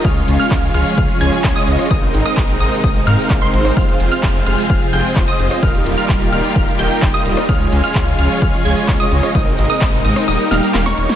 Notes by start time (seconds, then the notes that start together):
Already playing: F4
0.05 C#2 C#3 F3 G#3 C#4 F4 G#4 C#5 F5 F6, kick, tambourine
0.17 tambourine
0.28 C#2, open hi-hat, ride
0.40 G#3 C#4 F4 C#5 F5 F6, tambourine
0.51 C#2, kick, clap, tambourine
0.63 tambourine
0.74 C#2 G#3 C#4 F4 C#5 F5 F6, open hi-hat, ride
0.86 tambourine
0.98 C#2 G#3 C#4 F4 C#5 F5 F6, kick, tambourine
1.10 tambourine
1.21 C#2 G#3 C#4 F4 C#5 G#5 G#6, open hi-hat, ride
1.33 tambourine
1.44 C#2, kick, clap, tambourine
1.56 G#3 C#4 F4 C#5 D#5 D#6, tambourine
1.67 C#2, open hi-hat, ride
1.79 cross-stick, tambourine
1.91 G#1 C3 D#3 G#3 A#3 C4 D#4 A#4 D#5 D#6, kick, tambourine
2.02 tambourine
2.14 G#1, open hi-hat, ride
2.26 G#3 C4 D#4 A#4 D#5 D#6, tambourine
2.37 G#1, kick, clap, tambourine
2.49 tambourine
2.60 G#1 G#3 C4 D#4 A#4 D#5 D#6, open hi-hat, ride
2.72 tambourine
2.84 G#1 G#3 C4 D#4 A#4 D#5 D#6, kick, tambourine
2.96 tambourine
3.07 G#2 G#3 C4 D#4 A#4 F5 F6, clap, open hi-hat, ride
3.19 tambourine
3.30 G#1, kick, clap, tambourine
3.42 G#3 C4 D#4 A#4 C5 C6, tambourine
3.53 G#1, open hi-hat, ride
3.65 cross-stick, tambourine
3.77 F1 C3 F3 G#3 C4 F4 G#4 C5 F5 F6, kick, tambourine
3.89 tambourine
4.00 F1, open hi-hat, ride
4.12 G#3 C4 F4 C5 F5 F6, tambourine
4.23 F1, kick, clap, tambourine
4.35 tambourine
4.46 F1 G#3 C4 F4 C5 F5 F6, open hi-hat, ride
4.58 tambourine
4.70 F1 G#3 C4 F4 C5 F5 F6, kick, tambourine
4.82 tambourine
4.93 F1 G#3 C4 F4 C5 G5 G6, open hi-hat, ride
5.05 tambourine
5.16 F1, kick, clap, tambourine
5.28 G#3 C4 F4 C5 D#5 D#6, tambourine
5.39 F1, open hi-hat, ride
5.51 cross-stick, tambourine
5.63 D#1 D#3 G3 A#3 D#4 F4 G4 A#4 F5 F6, kick, tambourine
5.75 tambourine
5.86 D#1, open hi-hat, ride
5.98 G3 D#4 F4 A#4 F5 F6, tambourine
6.09 D#1, kick, clap, tambourine
6.21 tambourine
6.32 D#1 G3 D#4 F4 A#4 F5 F6, open hi-hat, ride
6.44 tambourine
6.56 D#1 G3 D#4 F4 A#4 F5 F6, kick, tambourine
6.68 tambourine
6.79 D#1 G3 D#4 F4 A#4 G5 G6, clap, open hi-hat, ride
6.91 tambourine
7.02 D#1, kick, clap, tambourine
7.14 G3 D#4 F4 A#4 D#5 D#6, tambourine
7.26 D#1, open hi-hat, ride
7.37 cross-stick, tambourine
7.49 C#2 C#3 F3 G#3 C#4 F4 G#4 C#5 F5 F6, kick, tambourine
7.61 tambourine
7.72 C#2, open hi-hat, ride
7.84 G#3 C#4 F4 C#5 F5 F6, tambourine
7.95 C#2, kick, clap, tambourine
8.07 tambourine
8.19 C#2 G#3 C#4 F4 C#5 F5 F6, open hi-hat, ride
8.30 tambourine
8.42 C#2 G#3 C#4 F4 C#5 F5 F6, kick, tambourine
8.54 tambourine
8.65 C#2 G#3 C#4 F4 C#5 G#5 G#6, open hi-hat, ride
8.77 tambourine
8.88 C#2, kick, clap, tambourine
9.00 G#3 C#4 F4 C#5 D#5 D#6, tambourine
9.12 C#2, open hi-hat, ride
9.23 cross-stick, tambourine
9.35 G#1 C3 D#3 G#3 A#3 C4 D#4 A#4 D#5 D#6, kick, tambourine
9.47 tambourine
9.58 G#1, open hi-hat, ride
9.70 G#3 C4 D#4 A#4 D#5 D#6, tambourine
9.81 G#1, kick, clap, tambourine
9.93 tambourine
10.05 G#1 G#3 C4 D#4 A#4 D#5 D#6, open hi-hat, ride
10.16 cross-stick, tambourine
10.28 D#1 A#2 G3 A#3 D#4 G4 A#4 D#5 D#6, tambourine
10.40 tambourine
10.51 D#1 G3 A#3 D#4 A#4 F5 F6, snare, open hi-hat, ride
10.63 tambourine
10.74 D#1, snare, clap, tambourine
10.86 G3 A#3 D#4 A#4 C#5 C#6, snare
10.98 D#1, open hi-hat, ride
11.09 snare, tambourine